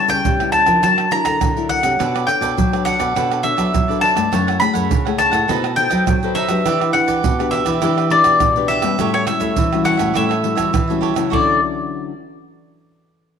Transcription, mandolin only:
0, 0, Header, 1, 2, 480
1, 0, Start_track
1, 0, Key_signature, 2, "major"
1, 0, Tempo, 582524
1, 1646, Time_signature, 4, 2, 24, 8
1, 11035, End_track
2, 0, Start_track
2, 0, Title_t, "Mandolin"
2, 0, Program_c, 0, 25
2, 78, Note_on_c, 0, 79, 97
2, 426, Note_off_c, 0, 79, 0
2, 429, Note_on_c, 0, 81, 97
2, 660, Note_off_c, 0, 81, 0
2, 687, Note_on_c, 0, 81, 98
2, 910, Note_off_c, 0, 81, 0
2, 922, Note_on_c, 0, 82, 96
2, 1024, Note_off_c, 0, 82, 0
2, 1034, Note_on_c, 0, 82, 93
2, 1392, Note_off_c, 0, 82, 0
2, 1396, Note_on_c, 0, 78, 96
2, 1865, Note_off_c, 0, 78, 0
2, 1868, Note_on_c, 0, 79, 88
2, 2345, Note_off_c, 0, 79, 0
2, 2348, Note_on_c, 0, 78, 102
2, 2828, Note_on_c, 0, 76, 96
2, 2853, Note_off_c, 0, 78, 0
2, 3286, Note_off_c, 0, 76, 0
2, 3306, Note_on_c, 0, 81, 96
2, 3785, Note_off_c, 0, 81, 0
2, 3789, Note_on_c, 0, 83, 101
2, 4246, Note_off_c, 0, 83, 0
2, 4273, Note_on_c, 0, 81, 108
2, 4729, Note_off_c, 0, 81, 0
2, 4747, Note_on_c, 0, 79, 100
2, 5232, Note_on_c, 0, 76, 94
2, 5254, Note_off_c, 0, 79, 0
2, 5711, Note_on_c, 0, 78, 85
2, 5736, Note_off_c, 0, 76, 0
2, 6168, Note_off_c, 0, 78, 0
2, 6188, Note_on_c, 0, 76, 105
2, 6647, Note_off_c, 0, 76, 0
2, 6686, Note_on_c, 0, 74, 94
2, 7136, Note_off_c, 0, 74, 0
2, 7154, Note_on_c, 0, 76, 97
2, 7497, Note_off_c, 0, 76, 0
2, 7529, Note_on_c, 0, 73, 90
2, 7638, Note_off_c, 0, 73, 0
2, 7641, Note_on_c, 0, 76, 83
2, 8093, Note_off_c, 0, 76, 0
2, 8116, Note_on_c, 0, 78, 100
2, 8371, Note_off_c, 0, 78, 0
2, 8376, Note_on_c, 0, 76, 84
2, 9060, Note_off_c, 0, 76, 0
2, 9338, Note_on_c, 0, 74, 87
2, 9558, Note_off_c, 0, 74, 0
2, 11035, End_track
0, 0, End_of_file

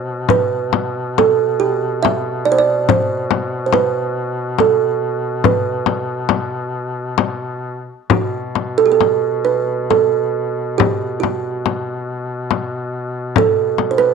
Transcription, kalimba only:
0, 0, Header, 1, 2, 480
1, 0, Start_track
1, 0, Tempo, 879765
1, 157, Time_signature, 3, 2, 24, 8
1, 1115, Tempo, 849858
1, 3515, Tempo, 900901
1, 5915, Tempo, 851064
1, 7800, End_track
2, 0, Start_track
2, 0, Title_t, "Kalimba"
2, 0, Program_c, 0, 108
2, 0, Note_on_c, 0, 72, 83
2, 164, Note_on_c, 0, 71, 91
2, 172, Note_off_c, 0, 72, 0
2, 646, Note_on_c, 0, 69, 81
2, 658, Note_off_c, 0, 71, 0
2, 866, Note_off_c, 0, 69, 0
2, 872, Note_on_c, 0, 67, 78
2, 1105, Note_on_c, 0, 76, 88
2, 1119, Note_off_c, 0, 67, 0
2, 1347, Note_on_c, 0, 74, 86
2, 1359, Note_off_c, 0, 76, 0
2, 1383, Note_on_c, 0, 72, 77
2, 1390, Note_off_c, 0, 74, 0
2, 1421, Note_on_c, 0, 74, 87
2, 1425, Note_off_c, 0, 72, 0
2, 1593, Note_off_c, 0, 74, 0
2, 1597, Note_on_c, 0, 72, 89
2, 2010, Note_off_c, 0, 72, 0
2, 2030, Note_on_c, 0, 72, 62
2, 2068, Note_off_c, 0, 72, 0
2, 2071, Note_on_c, 0, 71, 81
2, 2560, Note_on_c, 0, 69, 75
2, 2571, Note_off_c, 0, 71, 0
2, 3040, Note_on_c, 0, 71, 73
2, 3054, Note_off_c, 0, 69, 0
2, 3973, Note_off_c, 0, 71, 0
2, 4481, Note_on_c, 0, 66, 67
2, 4839, Note_on_c, 0, 69, 79
2, 4853, Note_off_c, 0, 66, 0
2, 4880, Note_off_c, 0, 69, 0
2, 4881, Note_on_c, 0, 67, 67
2, 4913, Note_on_c, 0, 69, 79
2, 4918, Note_off_c, 0, 67, 0
2, 5195, Note_on_c, 0, 71, 77
2, 5211, Note_off_c, 0, 69, 0
2, 5439, Note_on_c, 0, 69, 75
2, 5444, Note_off_c, 0, 71, 0
2, 5892, Note_off_c, 0, 69, 0
2, 5906, Note_on_c, 0, 67, 78
2, 6142, Note_on_c, 0, 66, 67
2, 6165, Note_off_c, 0, 67, 0
2, 6847, Note_off_c, 0, 66, 0
2, 7373, Note_on_c, 0, 69, 88
2, 7670, Note_on_c, 0, 72, 70
2, 7694, Note_off_c, 0, 69, 0
2, 7711, Note_off_c, 0, 72, 0
2, 7711, Note_on_c, 0, 71, 89
2, 7800, Note_off_c, 0, 71, 0
2, 7800, End_track
0, 0, End_of_file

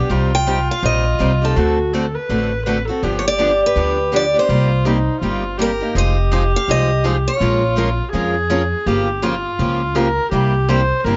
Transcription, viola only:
0, 0, Header, 1, 2, 480
1, 0, Start_track
1, 0, Key_signature, -3, "minor"
1, 0, Tempo, 365186
1, 138, Time_signature, 4, 2, 24, 8
1, 7822, Key_signature, -4, "minor"
1, 14678, End_track
2, 0, Start_track
2, 0, Title_t, "Viola"
2, 0, Program_c, 0, 41
2, 0, Note_on_c, 0, 67, 72
2, 136, Note_on_c, 0, 65, 85
2, 155, Note_off_c, 0, 67, 0
2, 2051, Note_on_c, 0, 66, 79
2, 2071, Note_off_c, 0, 65, 0
2, 2540, Note_on_c, 0, 69, 72
2, 2560, Note_off_c, 0, 66, 0
2, 2832, Note_on_c, 0, 71, 83
2, 2851, Note_off_c, 0, 69, 0
2, 3492, Note_off_c, 0, 71, 0
2, 3500, Note_on_c, 0, 71, 74
2, 3770, Note_off_c, 0, 71, 0
2, 3789, Note_on_c, 0, 69, 78
2, 3984, Note_on_c, 0, 67, 85
2, 4004, Note_off_c, 0, 69, 0
2, 5902, Note_on_c, 0, 65, 75
2, 5921, Note_off_c, 0, 67, 0
2, 6381, Note_on_c, 0, 63, 70
2, 6401, Note_off_c, 0, 65, 0
2, 6843, Note_off_c, 0, 63, 0
2, 6851, Note_on_c, 0, 65, 75
2, 7332, Note_on_c, 0, 67, 62
2, 7351, Note_off_c, 0, 65, 0
2, 7802, Note_off_c, 0, 67, 0
2, 7810, Note_on_c, 0, 67, 92
2, 9681, Note_off_c, 0, 67, 0
2, 9728, Note_on_c, 0, 65, 82
2, 10640, Note_off_c, 0, 65, 0
2, 10681, Note_on_c, 0, 68, 90
2, 11658, Note_on_c, 0, 67, 93
2, 11678, Note_off_c, 0, 68, 0
2, 12135, Note_on_c, 0, 65, 83
2, 12155, Note_off_c, 0, 67, 0
2, 13090, Note_on_c, 0, 70, 91
2, 13110, Note_off_c, 0, 65, 0
2, 13561, Note_off_c, 0, 70, 0
2, 13569, Note_on_c, 0, 67, 88
2, 14048, Note_on_c, 0, 72, 91
2, 14068, Note_off_c, 0, 67, 0
2, 14453, Note_off_c, 0, 72, 0
2, 14453, Note_on_c, 0, 72, 61
2, 14522, Note_on_c, 0, 70, 88
2, 14542, Note_off_c, 0, 72, 0
2, 14678, Note_off_c, 0, 70, 0
2, 14678, End_track
0, 0, End_of_file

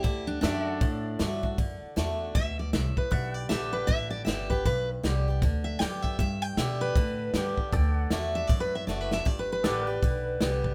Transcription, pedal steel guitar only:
0, 0, Header, 1, 2, 480
1, 0, Start_track
1, 0, Key_signature, 1, "major"
1, 0, Tempo, 383877
1, 61, Time_signature, 4, 2, 24, 8
1, 13436, End_track
2, 0, Start_track
2, 0, Title_t, "Pedal steel guitar"
2, 0, Program_c, 0, 26
2, 544, Note_on_c, 0, 69, 68
2, 560, Note_on_c, 0, 76, 72
2, 568, Note_on_c, 0, 79, 71
2, 818, Note_off_c, 0, 79, 0
2, 818, Note_on_c, 0, 78, 71
2, 873, Note_off_c, 0, 76, 0
2, 873, Note_on_c, 0, 74, 72
2, 3870, Note_off_c, 0, 69, 0
2, 3878, Note_off_c, 0, 74, 0
2, 3882, Note_off_c, 0, 78, 0
2, 3896, Note_on_c, 0, 71, 73
2, 3910, Note_on_c, 0, 74, 67
2, 3925, Note_on_c, 0, 78, 75
2, 4175, Note_off_c, 0, 78, 0
2, 4175, Note_on_c, 0, 79, 75
2, 9611, Note_off_c, 0, 71, 0
2, 9618, Note_off_c, 0, 74, 0
2, 9625, Note_off_c, 0, 79, 0
2, 9667, Note_on_c, 0, 69, 69
2, 9674, Note_on_c, 0, 74, 77
2, 9693, Note_on_c, 0, 79, 77
2, 9943, Note_off_c, 0, 79, 0
2, 9943, Note_on_c, 0, 78, 77
2, 11566, Note_off_c, 0, 69, 0
2, 11569, Note_off_c, 0, 74, 0
2, 11579, Note_off_c, 0, 78, 0
2, 12053, Note_on_c, 0, 69, 75
2, 12064, Note_on_c, 0, 74, 75
2, 12077, Note_on_c, 0, 78, 72
2, 12328, Note_off_c, 0, 78, 0
2, 12328, Note_on_c, 0, 79, 72
2, 12366, Note_off_c, 0, 69, 0
2, 12366, Note_on_c, 0, 71, 75
2, 13436, Note_off_c, 0, 71, 0
2, 13436, Note_off_c, 0, 74, 0
2, 13436, Note_off_c, 0, 79, 0
2, 13436, End_track
0, 0, End_of_file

